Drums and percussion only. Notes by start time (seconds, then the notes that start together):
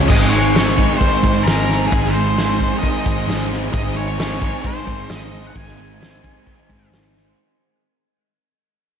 0.10 kick, crash
0.23 snare
0.32 open hi-hat
0.56 snare, open hi-hat
0.78 kick, open hi-hat
1.01 kick, open hi-hat
1.24 kick, open hi-hat
1.47 snare, open hi-hat
1.71 snare, open hi-hat
1.92 kick, open hi-hat
2.05 snare
2.16 open hi-hat
2.38 snare, open hi-hat
2.60 kick, open hi-hat
2.83 kick, open hi-hat
3.06 kick, open hi-hat
3.29 snare, open hi-hat
3.52 snare, open hi-hat
3.74 kick, open hi-hat
3.97 open hi-hat
4.19 snare, open hi-hat
4.42 kick, open hi-hat
4.64 kick, open hi-hat
4.87 kick, open hi-hat
5.09 snare, open hi-hat
5.33 open hi-hat
5.55 kick, open hi-hat
5.68 snare
5.80 open hi-hat
6.02 snare, open hi-hat
6.24 kick, open hi-hat
6.47 kick, open hi-hat
6.70 kick, open hi-hat
6.93 snare, open hi-hat
7.16 snare, open hi-hat